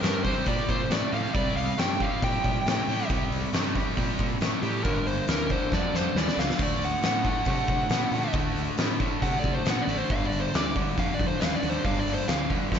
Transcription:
0.01 fingered electric bass G2, overdriven electric guitar C3 A3, lead electric guitar A#4, snare, open hi-hat
0.24 overdriven electric guitar C3 G3, lead electric guitar C5, kick, open hi-hat
0.46 fingered electric bass A#2, overdriven electric guitar C3 G3, lead electric guitar D5, kick, open hi-hat
0.69 fingered electric bass A#2, lead electric guitar C5, kick, open hi-hat
0.90 fingered electric bass A2, overdriven electric guitar C3 A3, lead electric guitar D5, snare, open hi-hat
1.12 fingered electric bass A2, overdriven electric guitar C3 G3, lead electric guitar F5, open hi-hat
1.34 fingered electric bass C2, overdriven electric guitar C3 G3, lead electric guitar D5, kick, open hi-hat
1.55 fingered electric bass C2, lead electric guitar F5, open hi-hat
1.78 fingered electric bass G2, overdriven electric guitar C3 A3, lead electric guitar G5, snare, open hi-hat
2.00 overdriven electric guitar C3 G3, lead electric guitar F5, kick, open hi-hat
2.22 fingered electric bass A#2, overdriven electric guitar C3 G3, lead electric guitar G5, kick, open hi-hat
2.44 fingered electric bass A#2, kick, open hi-hat
2.66 fingered electric bass A2, overdriven electric guitar C3 A3, snare, open hi-hat
2.88 fingered electric bass A2, overdriven electric guitar C3 G3, open hi-hat
3.10 fingered electric bass C2, overdriven electric guitar C3 G3, kick, open hi-hat
3.30 fingered electric bass C2, open hi-hat
3.52 fingered electric bass G2, overdriven electric guitar C3 A3, snare, open hi-hat
3.75 overdriven electric guitar C3 G3, kick, open hi-hat
3.97 fingered electric bass A#2, overdriven electric guitar C3 G3, kick, open hi-hat
4.19 fingered electric bass A#2, kick, open hi-hat
4.41 fingered electric bass A2, overdriven electric guitar C3 A3, snare, open hi-hat
4.62 fingered electric bass A2, overdriven electric guitar C3 G3, lead electric guitar G4, open hi-hat
4.84 fingered electric bass G1, overdriven electric guitar G2 D3, lead electric guitar A#4, kick, open hi-hat
5.07 fingered electric bass G1, lead electric guitar C5, open hi-hat
5.28 fingered electric bass D2, overdriven electric guitar G2 E3, lead electric guitar A#4, snare, open hi-hat
5.49 overdriven electric guitar G2 D3, lead electric guitar C5, kick, open hi-hat
5.72 fingered electric bass F2, overdriven electric guitar G2 D3, lead electric guitar D5, kick, snare
5.93 fingered electric bass F2, lead electric guitar C5, snare
6.15 fingered electric bass D#2, overdriven electric guitar G2 E3, lead electric guitar D5, snare
6.28 snare
6.37 fingered electric bass C#2, overdriven electric guitar G2 D3, lead electric guitar F5, snare
6.50 snare
6.59 fingered electric bass D2, overdriven electric guitar D3 A3, lead electric guitar D5, kick, open hi-hat, splash
6.79 fingered electric bass D2, open hi-hat
6.85 lead electric guitar F#5
7.02 fingered electric bass A2, overdriven electric guitar D3 B3, lead electric guitar F#5, snare, open hi-hat
7.24 overdriven electric guitar D3 A3, kick, open hi-hat
7.30 lead electric guitar F#5
7.45 fingered electric bass C3, overdriven electric guitar D3 A3, kick, open hi-hat
7.50 lead electric guitar F#5
7.68 fingered electric bass C3, kick, open hi-hat
7.90 fingered electric bass A#2, overdriven electric guitar D3 B3, snare, open hi-hat
8.11 fingered electric bass A#2, overdriven electric guitar D3 A3, open hi-hat
8.33 fingered electric bass D2, overdriven electric guitar D3 A3, kick, open hi-hat
8.54 fingered electric bass D2, open hi-hat
8.78 fingered electric bass A2, overdriven electric guitar D3 B3, snare, open hi-hat
9.00 overdriven electric guitar D3 A3, kick, open hi-hat
9.22 fingered electric bass C3, overdriven electric guitar D3 A3, lead electric guitar F#5, kick, open hi-hat
9.39 lead electric guitar D5
9.44 fingered electric bass C3, kick, open hi-hat
9.55 lead electric guitar C5
9.65 fingered electric bass A#2, overdriven electric guitar D3 B3, snare, open hi-hat
9.71 lead electric guitar F#5
9.82 lead electric guitar D5
9.87 fingered electric bass A1, overdriven electric guitar D3 A3, open hi-hat
9.98 lead electric guitar C5
10.10 fingered electric bass G1, overdriven electric guitar G2 D3, lead electric guitar F5, kick, open hi-hat
10.27 lead electric guitar D5
10.32 fingered electric bass G1, open hi-hat
10.41 lead electric guitar C5
10.54 fingered electric bass D2, overdriven electric guitar G2 E3, lead electric guitar D5, snare, open hi-hat
10.75 overdriven electric guitar G2 D3, kick, open hi-hat
10.97 fingered electric bass F2, overdriven electric guitar G2 D3, lead electric guitar F5, kick, open hi-hat
11.14 lead electric guitar D5
11.19 fingered electric bass F2, kick, open hi-hat
11.28 lead electric guitar C5
11.40 fingered electric bass D#2, overdriven electric guitar G2 E3, lead electric guitar F5, snare, open hi-hat
11.56 lead electric guitar D5
11.62 fingered electric bass D#2, overdriven electric guitar G2 D3, open hi-hat
11.70 lead electric guitar C5
11.84 fingered electric bass G1, overdriven electric guitar G2 D3, lead electric guitar F5, kick, open hi-hat
11.99 lead electric guitar D5
12.07 fingered electric bass G1, open hi-hat
12.14 lead electric guitar C5
12.27 fingered electric bass D2, overdriven electric guitar G2 E3, lead electric guitar F5, snare, open hi-hat
12.49 overdriven electric guitar G2 D3, kick, open hi-hat
12.71 fingered electric bass F2, overdriven electric guitar G2 D3, kick, snare

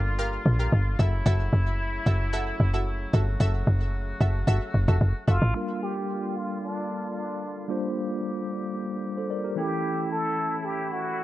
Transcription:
Already playing: log drum bass G1, woodwind section D3 G3 A#3 F4
0.19 synth pluck G4 A#4 F5
0.46 log drum bass A#1
0.59 synth pluck G4 A#4 F5
0.72 log drum bass G1
0.99 log drum bass F#1, woodwind section C#3 F#3 A3 E4, synth pluck F#4 A4 E5
1.26 log drum bass F#1, synth pluck F#4 A4 E5
1.53 log drum bass F#1
2.06 log drum bass F#1, synth pluck F#4 A4 E5
2.33 synth pluck F#4 A4 E5
2.60 log drum bass F#1
2.74 synth pluck F#4 A4 E5
3.13 log drum bass G1, synth pluck F#4 A4 E5, woodwind section F#4
3.40 log drum bass F#1, synth pluck F#4 A4 E5
3.67 log drum bass F#1
4.20 log drum bass F#1, synth pluck F#4 A4 E5
4.47 log drum bass G1, synth pluck F#4 A4 E5
4.74 log drum bass F#1
4.88 log drum bass F1, synth pluck F#4 A4 E5
5.01 log drum bass F#1
5.27 log drum bass F#1, muted trumpet F4, synth pluck F#4 A4 E5
5.42 log drum bass A1
5.54 woodwind section D3 G3 A#3 F4, tine electric piano G3 A#3 D4 F4 A#4
5.83 muted trumpet G4
6.36 muted trumpet F4
6.63 muted trumpet D4
7.17 muted trumpet D4
7.68 tine electric piano G3 A#3 D4 F4 C5, woodwind section G4
9.17 tine electric piano A4 C5
9.30 tine electric piano A#4 D5
9.44 tine electric piano G4 A#4
9.55 woodwind section A2 E3 C#4 E4, tine electric piano E3 A3 C#4 E4 A4, muted trumpet G4
10.11 muted trumpet A4
10.65 muted trumpet G4
10.92 muted trumpet F#4

